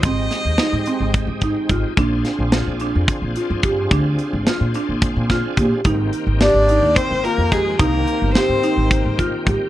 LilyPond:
<<
  \new Staff \with { instrumentName = "Violin" } { \time 7/8 \key bes \mixolydian \tempo 4 = 108 ees''2 r4. | r2. r8 | r2. r8 | r4 d''4 c''8 bes'8 aes'8 |
bes'4 c''4. r4 | }
  \new Staff \with { instrumentName = "Marimba" } { \time 7/8 \key bes \mixolydian c'4 ees'8 c'4 ees'8 f'8 | d'4 f'8 d'4 f'8 g'8 | d'4 f'8 d'4 f'8 g'8 | ees'4 g'8 ees'4 f'8 g'8 |
ees'4 g'8 ees'4 f'8 g'8 | }
  \new Staff \with { instrumentName = "Tonewheel organ" } { \time 7/8 \key bes \mixolydian <aes c' ees' g'>2.~ <aes c' ees' g'>8 | <c' d' f' aes'>2.~ <c' d' f' aes'>8~ | <c' d' f' aes'>2.~ <c' d' f' aes'>8 | <ees bes c' g'>2.~ <ees bes c' g'>8~ |
<ees bes c' g'>2.~ <ees bes c' g'>8 | }
  \new Staff \with { instrumentName = "Flugelhorn" } { \time 7/8 \key bes \mixolydian r2. r8 | r2. r8 | r2. r8 | r4 d'4 c'8 bes8 aes8 |
bes4 c'4. r4 | }
  \new Staff \with { instrumentName = "Upright bass" } { \clef bass \time 7/8 \key bes \mixolydian aes,,8 r16 ees,16 r16 aes,16 r16 aes,,8 aes,8 r16 aes,,16 r16 | bes,,8 r16 bes,,8 bes,,8 f,16 r16 bes,,16 r16 g,8. | d,8 r16 aes,,16 r16 bes,16 r16 bes,,8 bes,8 r16 bes,16 r16 | aes,,8 r16 aes,,8 aes,,8 ees,16 r16 aes,,16 r16 f,8. |
c,8 r16 g,,16 r16 aes,16 r16 aes,,8 aes,8 r16 aes,16 r16 | }
  \new DrumStaff \with { instrumentName = "Drums" } \drummode { \time 7/8 <hh bd>8 <hh sn>8 <hh sn>8 hh8 <hh bd>8 <hh bd>8 <hh bd>8 | <hh bd>8 <hh sn>8 <hh sn>8 hh8 <hh bd>8 hh8 <hh bd>8 | <hh bd>8 hh8 <hh sn>8 hh8 <hh bd>8 <hh bd sn>8 <hh bd>8 | <hh bd>8 hh8 <hh sn>8 hh8 <hh bd>8 hh8 <hh bd>8 |
<hh bd>8 hh8 <hh sn>8 hh8 <hh bd>8 <hh bd>8 <hh bd>8 | }
>>